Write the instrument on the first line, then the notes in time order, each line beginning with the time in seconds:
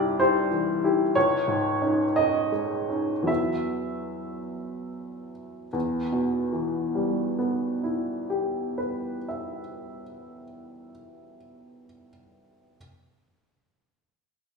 upright piano
Already playing: C2 G2 E4 G4 D5
0.19 E4 G4 C5
0.51 E3
0.84 E4 G4
1.15 C#2 C#5
1.48 G#2
1.81 C#4 D#4
2.16 C#4 D#4 D#5
2.52 G#3
2.89 C#4 D#4
3.22 E2 F#3 B3
3.27 E4 E5
5.73 E2
6.12 B2
6.53 E3
6.95 G3
7.39 B3
7.84 E4
8.30 G4
8.78 B4
9.29 E5